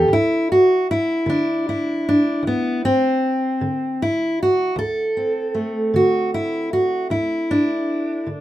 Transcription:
0.00 0.12 G4 medium
0.00 0.11 A4 medium
0.08 0.79 D2 medium
0.13 0.51 E4 medium
0.52 0.89 F#4 medium
0.91 1.67 E4 medium
1.26 1.97 D3 medium
1.26 2.06 D4 medium
1.69 2.84 E4 medium
2.09 2.46 D4 medium
2.43 3.13 D2 medium
2.47 2.84 B3 medium
2.85 4.01 C4 medium
3.61 4.31 D3 medium
4.02 4.40 E4 medium
4.43 4.78 F#4 medium
4.76 5.47 D2 medium
4.76 5.95 A4 medium
5.17 7.50 C4 soft
5.55 8.41 A3 soft
5.94 6.64 D3 medium
5.94 6.34 F#4 medium
6.34 6.72 E4 medium
6.73 7.11 F#4 medium
7.10 7.80 D2 medium
7.10 8.28 E4 medium
7.51 8.41 D4 medium
8.27 8.41 D3 medium

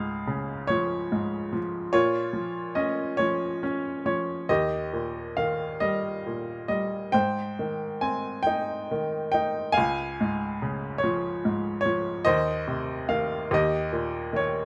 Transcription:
0.00 1.90 C#2 medium
0.00 1.10 G#2 soft
0.00 0.65 G#4 medium
0.00 0.63 F5 medium
0.27 1.89 C#3 soft
0.67 1.51 F3 soft
0.67 1.57 C#5 medium
1.12 1.91 G#2 soft
1.53 1.92 F3 soft
1.93 4.46 A#2 medium
1.93 3.16 F4 medium
1.93 2.79 C#5 medium
2.33 3.18 F3 soft
2.75 3.62 C#4 soft
2.75 3.20 D#5 medium
3.17 4.04 F3 soft
3.17 4.04 C#5 medium
3.63 4.47 C#4 soft
4.06 4.48 F3 soft
4.06 4.51 C#5 medium
4.49 7.09 D#2 soft
4.49 5.77 G4 medium
4.49 5.39 D#5 medium
4.93 6.25 A#2 soft
5.37 7.10 D#3 soft
5.37 5.82 F5 medium
5.80 6.67 G3 soft
5.80 6.67 D#5 medium
6.26 7.12 A#2 soft
6.68 7.12 G3 soft
6.68 7.10 D#5 medium
7.12 9.71 G#2 soft
7.12 8.42 C5 medium
7.12 8.04 G5 medium
7.59 8.90 D#3 soft
8.01 9.71 C4 soft
8.01 8.47 G#5 medium
8.43 9.30 G5 medium
8.47 9.33 D#4 soft
8.91 9.74 D#3 soft
9.32 9.75 D#4 soft
9.32 9.76 G5 medium
9.72 10.97 F5 medium
9.72 11.04 G#5 medium
9.77 12.23 C#2 medium
10.21 11.43 G#2 soft
10.62 12.23 C#3 soft
10.98 11.79 C#5 medium
11.04 11.84 F3 soft
11.45 12.24 G#2 soft
11.81 12.25 C#5 medium
11.86 12.25 F3 medium
12.25 13.47 D#2 medium
12.25 13.46 C5 medium
12.25 13.10 D#5 medium
12.68 13.48 C3 soft
13.09 13.49 D#3 soft
13.09 13.51 F5 medium
13.51 14.65 D#2 medium
13.51 14.65 G4 medium
13.51 14.38 D#5 medium
13.92 14.65 A#2 soft
14.33 14.65 D#3 soft
14.33 14.65 C#5 medium

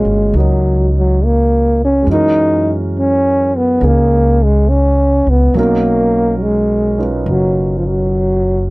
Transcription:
0.00 0.35 G#3 medium
0.00 2.06 A#3 soft
0.00 2.04 C#4 soft
0.00 2.07 F4 soft
0.00 0.34 F#4 soft
0.00 2.09 C#5 soft
0.05 0.31 G1 soft
0.33 2.03 C#2 medium
0.33 2.08 D#4 soft
0.33 2.08 F#4 soft
0.33 2.09 A#4 soft
0.38 0.91 F#3 medium
0.38 2.09 D#5 soft
0.98 1.26 F#3 medium
1.25 1.82 A#3 medium
1.85 2.07 C#4 medium
2.02 5.52 G#3 soft
2.02 3.78 C#4 soft
2.07 3.76 F#2 medium
2.07 5.54 E3 soft
2.07 5.56 F#4 soft
2.11 2.75 D#4 medium
2.11 5.57 A#4 soft
2.99 3.58 C#4 medium
3.57 3.87 B3 medium
3.79 5.23 C#2 medium
3.79 5.53 C#4 soft
3.79 5.54 D#4 soft
3.79 5.55 G#4 soft
3.85 4.46 A#3 medium
4.44 4.71 G#3 medium
4.70 5.31 C#4 medium
5.27 5.52 C#2 soft
5.27 5.58 B3 medium
5.54 7.23 B1 medium
5.54 8.70 B2 soft
5.54 8.70 F#3 soft
5.54 6.37 A#3 medium
5.54 6.96 C#4 soft
5.58 6.97 D#4 soft
5.58 8.70 A#4 medium
6.38 6.43 F#3 soft
6.38 7.11 G#3 medium
6.98 8.70 C#4 soft
6.98 8.70 D#4 soft
6.98 8.70 F4 soft
6.98 8.70 B4 soft
7.26 8.69 F#1 medium
7.26 7.75 F#3 medium
7.78 7.89 F3 soft
7.87 8.70 F#3 medium

